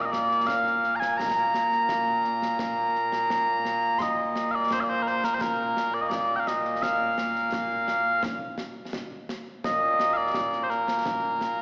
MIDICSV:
0, 0, Header, 1, 3, 480
1, 0, Start_track
1, 0, Key_signature, -2, "major"
1, 0, Tempo, 705882
1, 805, Time_signature, 4, 2, 24, 8
1, 7901, End_track
2, 0, Start_track
2, 0, Title_t, "Bagpipes"
2, 0, Program_c, 0, 109
2, 0, Note_on_c, 0, 46, 89
2, 0, Note_on_c, 0, 58, 89
2, 10, Note_on_c, 0, 77, 64
2, 37, Note_off_c, 0, 77, 0
2, 37, Note_on_c, 0, 75, 64
2, 79, Note_off_c, 0, 75, 0
2, 79, Note_on_c, 0, 74, 91
2, 317, Note_off_c, 0, 74, 0
2, 317, Note_on_c, 0, 77, 98
2, 651, Note_off_c, 0, 77, 0
2, 651, Note_on_c, 0, 82, 92
2, 677, Note_off_c, 0, 82, 0
2, 677, Note_on_c, 0, 80, 92
2, 798, Note_off_c, 0, 80, 0
2, 798, Note_on_c, 0, 82, 104
2, 2712, Note_off_c, 0, 82, 0
2, 2712, Note_on_c, 0, 84, 97
2, 2735, Note_off_c, 0, 84, 0
2, 2735, Note_on_c, 0, 75, 97
2, 3067, Note_off_c, 0, 75, 0
2, 3067, Note_on_c, 0, 77, 89
2, 3094, Note_off_c, 0, 77, 0
2, 3094, Note_on_c, 0, 74, 89
2, 3213, Note_off_c, 0, 74, 0
2, 3213, Note_on_c, 0, 72, 96
2, 3266, Note_off_c, 0, 72, 0
2, 3266, Note_on_c, 0, 77, 62
2, 3290, Note_off_c, 0, 77, 0
2, 3290, Note_on_c, 0, 74, 62
2, 3328, Note_off_c, 0, 74, 0
2, 3328, Note_on_c, 0, 72, 97
2, 3416, Note_off_c, 0, 72, 0
2, 3416, Note_on_c, 0, 70, 60
2, 3452, Note_off_c, 0, 70, 0
2, 3452, Note_on_c, 0, 72, 91
2, 3567, Note_off_c, 0, 72, 0
2, 3567, Note_on_c, 0, 70, 91
2, 3633, Note_off_c, 0, 70, 0
2, 3633, Note_on_c, 0, 72, 72
2, 3681, Note_off_c, 0, 72, 0
2, 3681, Note_on_c, 0, 70, 94
2, 4040, Note_off_c, 0, 70, 0
2, 4040, Note_on_c, 0, 74, 101
2, 4089, Note_off_c, 0, 74, 0
2, 4089, Note_on_c, 0, 75, 82
2, 4140, Note_off_c, 0, 75, 0
2, 4140, Note_on_c, 0, 74, 101
2, 4324, Note_off_c, 0, 74, 0
2, 4324, Note_on_c, 0, 79, 78
2, 4350, Note_off_c, 0, 79, 0
2, 4350, Note_on_c, 0, 77, 78
2, 4403, Note_off_c, 0, 77, 0
2, 4403, Note_on_c, 0, 75, 95
2, 4639, Note_off_c, 0, 75, 0
2, 4639, Note_on_c, 0, 77, 104
2, 5602, Note_off_c, 0, 46, 0
2, 5602, Note_off_c, 0, 58, 0
2, 5602, Note_off_c, 0, 77, 0
2, 6561, Note_on_c, 0, 46, 89
2, 6561, Note_on_c, 0, 58, 89
2, 6561, Note_on_c, 0, 75, 107
2, 6890, Note_off_c, 0, 75, 0
2, 6890, Note_on_c, 0, 77, 96
2, 6914, Note_off_c, 0, 77, 0
2, 6914, Note_on_c, 0, 74, 96
2, 7232, Note_off_c, 0, 74, 0
2, 7232, Note_on_c, 0, 72, 67
2, 7276, Note_off_c, 0, 72, 0
2, 7276, Note_on_c, 0, 70, 84
2, 7901, Note_off_c, 0, 46, 0
2, 7901, Note_off_c, 0, 58, 0
2, 7901, Note_off_c, 0, 70, 0
2, 7901, End_track
3, 0, Start_track
3, 0, Title_t, "Drums"
3, 89, Note_on_c, 9, 38, 71
3, 157, Note_off_c, 9, 38, 0
3, 213, Note_on_c, 9, 38, 30
3, 281, Note_off_c, 9, 38, 0
3, 329, Note_on_c, 9, 35, 54
3, 329, Note_on_c, 9, 38, 94
3, 397, Note_off_c, 9, 35, 0
3, 397, Note_off_c, 9, 38, 0
3, 451, Note_on_c, 9, 38, 29
3, 519, Note_off_c, 9, 38, 0
3, 570, Note_on_c, 9, 38, 27
3, 638, Note_off_c, 9, 38, 0
3, 693, Note_on_c, 9, 38, 70
3, 761, Note_off_c, 9, 38, 0
3, 813, Note_on_c, 9, 35, 55
3, 813, Note_on_c, 9, 38, 94
3, 881, Note_off_c, 9, 35, 0
3, 881, Note_off_c, 9, 38, 0
3, 1049, Note_on_c, 9, 38, 73
3, 1117, Note_off_c, 9, 38, 0
3, 1170, Note_on_c, 9, 38, 26
3, 1238, Note_off_c, 9, 38, 0
3, 1285, Note_on_c, 9, 35, 49
3, 1285, Note_on_c, 9, 38, 85
3, 1353, Note_off_c, 9, 35, 0
3, 1353, Note_off_c, 9, 38, 0
3, 1525, Note_on_c, 9, 38, 26
3, 1593, Note_off_c, 9, 38, 0
3, 1648, Note_on_c, 9, 38, 66
3, 1716, Note_off_c, 9, 38, 0
3, 1762, Note_on_c, 9, 35, 52
3, 1762, Note_on_c, 9, 38, 85
3, 1830, Note_off_c, 9, 35, 0
3, 1830, Note_off_c, 9, 38, 0
3, 2009, Note_on_c, 9, 38, 23
3, 2077, Note_off_c, 9, 38, 0
3, 2125, Note_on_c, 9, 38, 66
3, 2193, Note_off_c, 9, 38, 0
3, 2245, Note_on_c, 9, 35, 43
3, 2245, Note_on_c, 9, 38, 78
3, 2313, Note_off_c, 9, 35, 0
3, 2313, Note_off_c, 9, 38, 0
3, 2484, Note_on_c, 9, 38, 61
3, 2552, Note_off_c, 9, 38, 0
3, 2722, Note_on_c, 9, 35, 54
3, 2722, Note_on_c, 9, 38, 90
3, 2790, Note_off_c, 9, 35, 0
3, 2790, Note_off_c, 9, 38, 0
3, 2962, Note_on_c, 9, 38, 73
3, 3030, Note_off_c, 9, 38, 0
3, 3201, Note_on_c, 9, 35, 51
3, 3201, Note_on_c, 9, 38, 96
3, 3269, Note_off_c, 9, 35, 0
3, 3269, Note_off_c, 9, 38, 0
3, 3446, Note_on_c, 9, 38, 28
3, 3514, Note_off_c, 9, 38, 0
3, 3562, Note_on_c, 9, 38, 76
3, 3630, Note_off_c, 9, 38, 0
3, 3679, Note_on_c, 9, 35, 66
3, 3679, Note_on_c, 9, 38, 101
3, 3747, Note_off_c, 9, 35, 0
3, 3747, Note_off_c, 9, 38, 0
3, 3923, Note_on_c, 9, 38, 79
3, 3991, Note_off_c, 9, 38, 0
3, 4158, Note_on_c, 9, 35, 58
3, 4158, Note_on_c, 9, 38, 102
3, 4226, Note_off_c, 9, 35, 0
3, 4226, Note_off_c, 9, 38, 0
3, 4402, Note_on_c, 9, 38, 83
3, 4470, Note_off_c, 9, 38, 0
3, 4521, Note_on_c, 9, 38, 28
3, 4589, Note_off_c, 9, 38, 0
3, 4642, Note_on_c, 9, 35, 63
3, 4642, Note_on_c, 9, 38, 103
3, 4710, Note_off_c, 9, 35, 0
3, 4710, Note_off_c, 9, 38, 0
3, 4881, Note_on_c, 9, 38, 83
3, 4949, Note_off_c, 9, 38, 0
3, 5000, Note_on_c, 9, 38, 29
3, 5068, Note_off_c, 9, 38, 0
3, 5117, Note_on_c, 9, 35, 60
3, 5117, Note_on_c, 9, 38, 101
3, 5185, Note_off_c, 9, 35, 0
3, 5185, Note_off_c, 9, 38, 0
3, 5358, Note_on_c, 9, 38, 82
3, 5426, Note_off_c, 9, 38, 0
3, 5595, Note_on_c, 9, 35, 70
3, 5595, Note_on_c, 9, 38, 104
3, 5663, Note_off_c, 9, 35, 0
3, 5663, Note_off_c, 9, 38, 0
3, 5832, Note_on_c, 9, 38, 86
3, 5900, Note_off_c, 9, 38, 0
3, 6073, Note_on_c, 9, 35, 58
3, 6073, Note_on_c, 9, 38, 113
3, 6141, Note_off_c, 9, 35, 0
3, 6141, Note_off_c, 9, 38, 0
3, 6319, Note_on_c, 9, 38, 91
3, 6387, Note_off_c, 9, 38, 0
3, 6558, Note_on_c, 9, 35, 67
3, 6558, Note_on_c, 9, 38, 107
3, 6626, Note_off_c, 9, 35, 0
3, 6626, Note_off_c, 9, 38, 0
3, 6798, Note_on_c, 9, 38, 86
3, 6866, Note_off_c, 9, 38, 0
3, 7034, Note_on_c, 9, 35, 59
3, 7034, Note_on_c, 9, 38, 105
3, 7102, Note_off_c, 9, 35, 0
3, 7102, Note_off_c, 9, 38, 0
3, 7158, Note_on_c, 9, 38, 36
3, 7226, Note_off_c, 9, 38, 0
3, 7278, Note_on_c, 9, 38, 28
3, 7346, Note_off_c, 9, 38, 0
3, 7399, Note_on_c, 9, 38, 78
3, 7467, Note_off_c, 9, 38, 0
3, 7518, Note_on_c, 9, 35, 66
3, 7518, Note_on_c, 9, 38, 101
3, 7586, Note_off_c, 9, 35, 0
3, 7586, Note_off_c, 9, 38, 0
3, 7759, Note_on_c, 9, 38, 78
3, 7827, Note_off_c, 9, 38, 0
3, 7901, End_track
0, 0, End_of_file